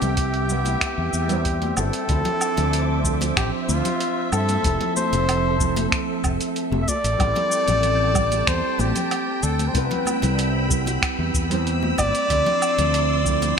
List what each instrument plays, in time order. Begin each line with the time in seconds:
Already playing: nylon-string guitar G3 B3 C4 E4 B4, flugelhorn G4, string machine E5 G5
0.02 fretless electric bass C2, closed hi-hat, low conga, shaker
0.17 kick, closed hi-hat, shaker
0.34 closed hi-hat
0.48 nylon-string guitar G3 B3 C4 E4, shaker
0.52 nylon-string guitar B4
0.65 closed hi-hat, high conga, shaker
0.81 finger snap, kick, closed hi-hat, low woodblock, shaker
0.98 fretless electric bass E2
1.13 fretless electric bass E2, shaker
1.27 nylon-string guitar G3 C4 E4 B4, closed hi-hat, shaker
1.32 nylon-string guitar C5
1.45 kick, closed hi-hat, shaker
1.62 closed hi-hat, high conga
1.77 fretless electric bass G1, flugelhorn A4, high conga, low woodblock, shaker
1.93 closed hi-hat, shaker
2.07 fretless electric bass D2, nylon-string guitar F3 C4 D4 E4, string machine C5 E5 D6, kick, closed hi-hat, shaker
2.11 nylon-string guitar A4
2.25 closed hi-hat, muted conga, low conga
2.41 low woodblock, shaker
2.57 fretless electric bass D2, closed hi-hat, muted conga, low conga, shaker
2.73 closed hi-hat, shaker
3.03 nylon-string guitar F3 C4 D4 E5, kick, shaker
3.07 nylon-string guitar A4
3.21 closed hi-hat, muted conga, shaker
3.37 fretless electric bass A1, flugelhorn G4, finger snap, kick, closed hi-hat, low woodblock, shaker
3.69 fretless electric bass D2, flugelhorn F4, high conga, shaker
3.85 closed hi-hat, low conga, shaker
4.00 closed hi-hat, shaker
4.32 fretless electric bass G2, flugelhorn A4, low woodblock, shaker
4.49 closed hi-hat, high conga, shaker
4.62 fretless electric bass F1, nylon-string guitar F3 A3 C4 E4, string machine A4, kick, closed hi-hat, shaker
4.66 nylon-string guitar A4
4.81 closed hi-hat, muted conga, low conga
4.96 flugelhorn C5, high conga, shaker
5.13 fretless electric bass F1, closed hi-hat, muted conga, low conga, shaker
5.29 closed hi-hat, low woodblock, shaker
5.58 nylon-string guitar F3 A3 C4 E4, kick, shaker
5.63 nylon-string guitar A4
5.76 closed hi-hat, muted conga, high conga, shaker
5.92 finger snap, kick, closed hi-hat, shaker
6.24 fretless electric bass F1, kick, low woodblock, shaker
6.41 closed hi-hat, shaker
6.56 closed hi-hat, shaker
6.72 fretless electric bass F1, high conga
6.82 flugelhorn E5
6.88 string machine A4 G5 A5, flugelhorn D5, kick, muted conga, high conga, shaker
7.04 fretless electric bass A1, closed hi-hat, shaker
7.18 fretless electric bass A1, nylon-string guitar G3 B3 C4 E4, kick, closed hi-hat, low woodblock, shaker
7.22 nylon-string guitar A4
7.35 closed hi-hat, muted conga, low conga
7.52 shaker
7.68 fretless electric bass A1, closed hi-hat, muted conga, low conga, shaker
7.83 closed hi-hat, shaker
8.13 nylon-string guitar G3 A3 C4 E4, kick, low woodblock, shaker
8.17 nylon-string guitar A4
8.32 closed hi-hat, muted conga, shaker
8.47 fretless electric bass E2, flugelhorn C5, finger snap, kick, closed hi-hat, shaker
8.79 fretless electric bass A1, flugelhorn G4, high conga, shaker
8.95 closed hi-hat, low conga, shaker
9.11 closed hi-hat, low woodblock, shaker
9.43 fretless electric bass D2, flugelhorn A4, shaker
9.59 closed hi-hat, high conga, shaker
9.68 flugelhorn C5
9.72 fretless electric bass C2, nylon-string guitar G3 B3 C4 E4, flugelhorn B4, string machine B5 E6, kick, closed hi-hat, shaker
9.77 nylon-string guitar B4
9.91 closed hi-hat, muted conga, low conga
10.06 high conga, low woodblock, shaker
10.22 fretless electric bass C2, closed hi-hat, muted conga, low conga, shaker
10.39 closed hi-hat, shaker
10.68 nylon-string guitar G3 B3 C4 E4, kick, shaker
10.73 nylon-string guitar B4
10.86 closed hi-hat, muted conga, high conga, shaker
11.02 finger snap, kick, closed hi-hat, low woodblock, shaker
11.19 fretless electric bass E2
11.34 fretless electric bass E2, kick, shaker
11.48 nylon-string guitar G3 C4 E4 B4, closed hi-hat, shaker
11.53 nylon-string guitar C5
11.67 closed hi-hat, shaker
11.83 high conga
11.98 fretless electric bass G1, flugelhorn D5, kick, muted conga, high conga, low woodblock, shaker
12.15 closed hi-hat, shaker
12.28 fretless electric bass D2, nylon-string guitar F3 C4 D4 E4, string machine D5 C6, kick, closed hi-hat, shaker
12.32 nylon-string guitar A4
12.46 closed hi-hat, muted conga, low conga
12.62 low woodblock, shaker
12.78 fretless electric bass D2, closed hi-hat, muted conga, low conga, shaker
12.94 closed hi-hat, shaker
13.24 nylon-string guitar F3 C4 D4 E4, kick, shaker
13.28 nylon-string guitar A4
13.42 closed hi-hat, muted conga, shaker